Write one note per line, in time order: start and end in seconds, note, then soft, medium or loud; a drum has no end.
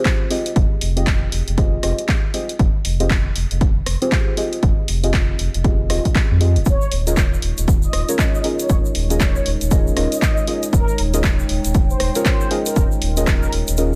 0.00 0.28 C4 loud
0.00 0.28 F4 medium
0.00 0.28 G4 medium
0.00 0.28 G#4 medium
0.00 0.28 C5 loud
0.05 kick loud
0.05 clap loud
0.05 closed hi-hat medium
0.30 0.93 C4 medium
0.30 0.93 F4 medium
0.30 0.93 G4 medium
0.30 0.93 G#4 medium
0.30 0.93 D#5 loud
0.30 open hi-hat loud
0.46 closed hi-hat medium
0.56 0.66 F1 loud
0.56 kick loud
0.56 closed hi-hat medium
0.81 1.26 F1 medium
0.81 open hi-hat loud
0.96 1.55 C4 medium
0.96 1.55 F4 medium
0.96 1.55 G4 medium
0.96 1.55 G#4 medium
0.96 1.55 D#5 medium
0.96 closed hi-hat medium
1.07 kick loud
1.07 clap loud
1.07 closed hi-hat medium
1.32 1.42 F1 medium
1.32 open hi-hat loud
1.48 1.77 F1 medium
1.48 closed hi-hat medium
1.57 1.81 C4 medium
1.57 1.81 F4 medium
1.57 1.81 G4 medium
1.57 1.81 G#4 medium
1.57 1.81 D#5 medium
1.57 kick loud
1.57 closed hi-hat medium
1.83 1.93 F1 medium
1.83 2.31 C4 medium
1.83 2.31 F4 medium
1.83 2.32 G4 medium
1.83 2.32 G#4 medium
1.83 2.32 D#5 medium
1.83 cross-stick medium
1.83 open hi-hat loud
1.99 closed hi-hat medium
2.08 kick loud
2.08 clap loud
2.08 closed hi-hat medium
2.34 2.52 C4 medium
2.34 2.52 F4 medium
2.34 2.52 G4 medium
2.34 2.52 G#4 medium
2.34 2.52 D#5 medium
2.34 open hi-hat loud
2.49 closed hi-hat medium
2.59 2.69 F1 medium
2.59 kick loud
2.59 closed hi-hat soft
2.85 3.30 F1 medium
2.85 open hi-hat loud
3.00 3.08 C4 medium
3.00 3.08 F4 medium
3.00 3.08 G4 medium
3.00 3.08 G#4 medium
3.00 3.08 D#5 loud
3.00 closed hi-hat medium
3.10 kick loud
3.10 clap loud
3.10 closed hi-hat medium
3.36 3.45 F1 medium
3.36 open hi-hat loud
3.51 3.81 F1 medium
3.51 closed hi-hat medium
3.61 kick loud
3.61 closed hi-hat soft
3.86 3.96 F1 medium
3.86 cross-stick medium
3.86 open hi-hat loud
4.02 4.35 C4 loud
4.02 4.35 F4 medium
4.02 4.35 G4 medium
4.02 4.35 G#4 medium
4.02 4.35 C5 loud
4.02 closed hi-hat medium
4.12 kick loud
4.12 clap loud
4.12 closed hi-hat soft
4.37 5.00 C4 medium
4.37 5.00 F4 medium
4.37 5.00 G4 medium
4.37 5.00 G#4 medium
4.37 5.00 D#5 medium
4.37 open hi-hat loud
4.53 closed hi-hat medium
4.63 4.72 F1 loud
4.63 kick loud
4.63 closed hi-hat soft
4.88 5.33 F1 medium
4.88 open hi-hat loud
5.03 5.62 C4 medium
5.03 5.62 F4 medium
5.03 5.62 G4 medium
5.03 5.62 G#4 medium
5.03 5.62 D#5 medium
5.03 closed hi-hat medium
5.14 kick loud
5.14 clap loud
5.14 closed hi-hat soft
5.39 5.49 F1 loud
5.39 open hi-hat loud
5.54 5.91 F1 medium
5.54 closed hi-hat medium
5.64 5.87 C4 medium
5.64 5.87 F4 medium
5.64 5.87 G4 medium
5.64 5.88 G#4 medium
5.64 5.88 D#5 medium
5.64 kick loud
5.64 closed hi-hat soft
5.90 6.00 D#1 loud
5.90 6.38 C4 medium
5.90 6.38 F4 medium
5.90 6.38 G4 medium
5.90 6.38 G#4 medium
5.90 6.38 D#5 medium
5.90 cross-stick medium
5.90 open hi-hat loud
6.05 kick medium
6.05 closed hi-hat medium
6.15 kick loud
6.15 clap loud
6.15 closed hi-hat soft
6.31 6.58 F2 medium
6.41 6.59 C4 medium
6.41 6.59 F4 medium
6.41 6.59 G4 medium
6.41 6.59 G#4 medium
6.41 6.59 D#5 medium
6.41 open hi-hat loud
6.56 6.62 D#1 medium
6.56 closed hi-hat medium
6.65 6.76 D#1 loud
6.65 13.95 G#3 medium
6.65 13.95 D#4 medium
6.65 10.69 F4 medium
6.65 13.95 C#5 medium
6.65 6.93 C#5 loud
6.65 kick loud
6.65 closed hi-hat medium
6.65 shaker medium
6.81 shaker soft
6.92 7.36 D#1 medium
6.92 open hi-hat loud
7.07 7.15 C#4 medium
7.07 7.15 F4 medium
7.07 7.15 G#4 medium
7.07 7.15 A#4 medium
7.07 7.15 D#5 loud
7.07 closed hi-hat medium
7.07 shaker medium
7.17 kick loud
7.17 clap loud
7.17 closed hi-hat soft
7.17 shaker medium
7.34 shaker soft
7.42 7.52 D#1 medium
7.42 open hi-hat loud
7.58 7.87 D#1 medium
7.58 closed hi-hat medium
7.58 shaker medium
7.68 kick loud
7.68 closed hi-hat medium
7.68 shaker medium
7.83 8.10 D#5 loud
7.83 shaker soft
7.93 8.03 D#1 medium
7.93 cross-stick medium
7.93 open hi-hat loud
8.08 8.42 C#4 loud
8.08 8.42 F4 medium
8.08 8.42 G#4 medium
8.08 8.42 A#4 medium
8.08 8.42 C#5 loud
8.08 closed hi-hat medium
8.08 shaker medium
8.19 8.46 D#5 loud
8.19 kick loud
8.19 clap loud
8.19 closed hi-hat soft
8.19 shaker medium
8.35 shaker soft
8.44 9.06 C#4 medium
8.44 9.07 F4 medium
8.44 9.07 G#4 medium
8.44 9.07 A#4 medium
8.44 9.07 D#5 medium
8.44 open hi-hat loud
8.59 8.76 C#5 medium
8.59 closed hi-hat medium
8.59 shaker medium
8.69 8.79 D#1 loud
8.69 kick loud
8.69 closed hi-hat soft
8.69 shaker medium
8.85 shaker soft
8.95 9.40 D#1 medium
8.95 open hi-hat loud
9.10 9.69 C#4 medium
9.10 9.69 F4 medium
9.10 9.69 G#4 medium
9.10 9.69 A#4 medium
9.10 9.69 D#5 medium
9.10 closed hi-hat medium
9.10 shaker medium
9.20 9.47 C#5 loud
9.20 kick loud
9.20 clap loud
9.20 closed hi-hat medium
9.20 shaker medium
9.36 shaker soft
9.46 9.55 D#1 medium
9.46 open hi-hat loud
9.61 9.91 D#1 medium
9.61 closed hi-hat medium
9.61 shaker medium
9.71 9.94 C#4 medium
9.71 9.94 F4 medium
9.71 9.94 G#4 medium
9.71 9.94 A#4 medium
9.71 9.94 D#5 medium
9.71 kick loud
9.71 closed hi-hat medium
9.71 shaker medium
9.87 shaker soft
9.96 10.06 D#1 medium
9.96 10.45 C#4 medium
9.96 10.45 F4 medium
9.96 10.45 G#4 medium
9.96 10.45 A#4 medium
9.96 10.45 D#5 medium
9.96 cross-stick medium
9.96 open hi-hat loud
10.12 10.65 D#5 loud
10.12 closed hi-hat medium
10.12 shaker medium
10.22 kick loud
10.22 clap loud
10.22 closed hi-hat soft
10.22 shaker medium
10.37 shaker soft
10.47 10.65 C#4 medium
10.47 10.65 F4 medium
10.47 10.66 G#4 medium
10.47 10.66 A#4 medium
10.47 10.66 D#5 medium
10.47 open hi-hat loud
10.63 closed hi-hat medium
10.63 shaker medium
10.73 10.83 D#1 medium
10.73 11.00 A#4 loud
10.73 13.95 G5 medium
10.73 kick loud
10.73 closed hi-hat medium
10.73 shaker medium
10.88 shaker soft
10.98 11.43 D#1 medium
10.98 open hi-hat loud
11.14 11.22 C#4 loud
11.14 11.22 F4 medium
11.14 11.22 G#4 medium
11.14 11.22 A#4 medium
11.14 11.22 D#5 loud
11.14 closed hi-hat medium
11.14 shaker medium
11.24 kick loud
11.24 clap loud
11.24 closed hi-hat medium
11.24 shaker medium
11.39 shaker soft
11.49 11.59 D#1 loud
11.49 open hi-hat loud
11.65 11.94 D#1 medium
11.65 closed hi-hat medium
11.65 shaker medium
11.74 kick loud
11.74 closed hi-hat medium
11.74 shaker medium
11.90 12.16 C5 loud
11.90 shaker soft
12.00 12.10 D#1 medium
12.00 cross-stick medium
12.00 open hi-hat loud
12.15 12.48 C#4 loud
12.15 12.48 F4 medium
12.15 12.48 G#4 medium
12.15 12.49 A#4 medium
12.15 12.49 C#5 loud
12.15 closed hi-hat medium
12.15 shaker medium
12.25 12.52 C5 loud
12.25 kick loud
12.25 clap loud
12.25 closed hi-hat medium
12.25 shaker medium
12.41 shaker soft
12.50 13.13 C#4 medium
12.50 13.13 F4 medium
12.50 13.13 G#4 medium
12.50 13.14 A#4 medium
12.50 13.14 D#5 medium
12.50 open hi-hat loud
12.66 12.82 A#4 medium
12.66 closed hi-hat medium
12.66 shaker medium
12.76 12.86 D#1 loud
12.76 kick loud
12.76 closed hi-hat medium
12.76 shaker medium
12.92 shaker soft
13.02 13.47 D#1 medium
13.02 open hi-hat loud
13.17 13.75 C#4 medium
13.17 13.75 F4 medium
13.17 13.76 G#4 medium
13.17 13.76 A#4 medium
13.17 13.76 D#5 medium
13.17 closed hi-hat medium
13.17 shaker medium
13.27 13.54 A#4 loud
13.27 kick loud
13.27 cross-stick medium
13.27 clap loud
13.27 closed hi-hat medium
13.27 shaker medium
13.43 shaker soft
13.53 13.62 D#1 medium
13.53 open hi-hat loud
13.68 13.95 D#1 medium
13.68 closed hi-hat medium
13.68 shaker medium
13.77 13.95 C#4 medium
13.77 13.95 F4 medium
13.77 13.95 G#4 medium
13.77 13.95 A#4 medium
13.77 13.95 D#5 medium
13.77 closed hi-hat medium
13.77 shaker medium